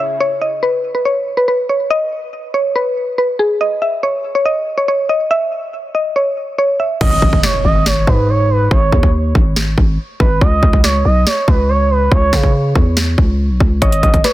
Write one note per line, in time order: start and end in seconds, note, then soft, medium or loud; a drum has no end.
0.00 0.17 C#3 medium
0.00 0.17 C#4 medium
0.00 0.17 E4 medium
0.00 0.17 G#4 medium
0.00 0.18 E5 medium
0.20 0.40 C#5 loud
0.41 0.61 D#5 medium
0.63 0.93 B4 medium
0.95 1.04 B4 medium
1.05 1.35 C#5 medium
1.37 1.47 B4 medium
1.48 1.67 B4 medium
1.69 1.89 C#5 medium
1.90 2.50 D#5 loud
2.54 2.74 C#5 medium
2.76 3.15 B4 medium
3.18 3.38 B4 medium
3.39 3.59 G#4 medium
3.61 3.80 D#5 loud
3.82 4.01 E5 medium
4.03 4.33 C#5 medium
4.35 4.45 C#5 medium
4.45 4.76 D#5 medium
4.78 4.87 C#5 medium
4.88 5.08 C#5 medium
5.09 5.29 D#5 medium
5.31 5.91 E5 loud
5.95 6.14 D#5 medium
6.16 6.56 C#5 medium
6.58 6.78 C#5 medium
6.80 6.99 E5 medium
7.01 7.21 G#1 loud
7.01 7.41 D#5 loud
7.01 kick loud
7.01 crash medium
7.01 impact medium
7.22 7.43 G#1 loud
7.22 kick loud
7.33 kick loud
7.43 7.64 C#5 medium
7.43 snare loud
7.65 8.06 G#1 loud
7.65 7.85 D#5 medium
7.86 8.06 C#5 medium
7.86 snare loud
8.07 8.69 G#2 loud
8.07 8.28 B4 medium
8.07 kick loud
8.29 8.49 C#5 medium
8.50 8.70 B4 loud
8.71 8.92 G#1 loud
8.71 9.11 C#5 medium
8.71 kick loud
8.92 9.33 D#2 loud
8.92 kick medium
9.03 kick loud
9.35 9.76 G#1 loud
9.35 kick loud
9.56 snare loud
9.78 9.98 G#1 loud
9.78 kick loud
10.20 10.41 G#1 loud
10.20 10.40 B4 medium
10.20 kick loud
10.41 10.62 C#2 loud
10.41 10.81 D#5 loud
10.41 kick loud
10.63 11.04 C#2 loud
10.63 kick medium
10.73 kick loud
10.84 11.04 C#5 medium
10.84 snare medium
11.05 11.26 B1 loud
11.05 11.25 D#5 medium
11.26 11.47 C#5 loud
11.26 snare loud
11.48 12.09 C#2 loud
11.48 11.68 B4 medium
11.48 kick loud
11.69 11.89 C#5 medium
11.90 12.11 B4 medium
12.12 12.32 C#2 loud
12.12 12.52 C#5 loud
12.12 kick loud
12.33 12.74 C#3 loud
12.33 kick loud
12.33 snare loud
12.43 kick loud
12.75 13.16 E2 loud
12.75 kick loud
12.97 snare loud
13.18 13.51 C#2 loud
13.18 kick loud
13.50 13.60 B1 loud
13.60 13.81 C#2 loud
13.60 kick loud
13.82 14.02 G#1 loud
13.82 14.01 C#5 loud
13.82 14.22 D#5 loud
13.82 kick loud
13.82 closed hi-hat medium
13.92 closed hi-hat medium
14.03 14.24 G#1 loud
14.03 14.23 D#5 medium
14.03 kick medium
14.03 closed hi-hat medium
14.14 kick loud
14.14 closed hi-hat medium
14.24 14.33 B4 medium
14.24 14.33 C#5 medium
14.24 snare medium
14.24 closed hi-hat medium